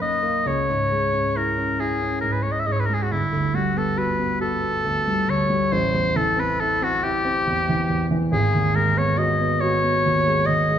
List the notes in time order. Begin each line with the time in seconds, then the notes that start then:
Already playing: B1 A#3 C#4 D#4
0.00 F#2 D#5
0.23 A#3
0.46 C#2 C#5
0.70 G#2
0.92 G#3
1.14 C#4
1.36 E4 A#4
1.58 C#4
1.80 E4 G#4
2.02 C#4
2.21 G#2 A#4
2.32 B4
2.43 G#3 C#5
2.52 D#5
2.60 E5
2.66 G#2 D#5
2.72 C#5
2.80 B4
2.86 G#3 A#4
2.94 G#4
3.03 F#4
3.11 G1 E4
3.32 D2
3.54 G3 F#4
3.76 B3 A4
3.97 F#4 B4
4.19 B3
4.41 F#4 A4
4.62 B3
4.84 D2
5.07 G3
5.28 D2 C#5
5.50 G3
5.72 A1 C5
5.95 E2
6.16 E3 A4
6.36 C4 B4
6.60 E4 A4
6.81 C4 F#4
7.03 E4 G4
7.25 C4
7.47 E2
7.69 E3
7.90 E2
8.11 E3
8.32 G#1 G#4
8.55 D#2
8.75 G#3 A#4
8.96 B3 C#5
9.18 F#4 D#5
9.40 B3
9.61 F#4 C#5
9.84 B3
10.06 D#2
10.28 G#3
10.46 D#2 D#5
10.70 G#3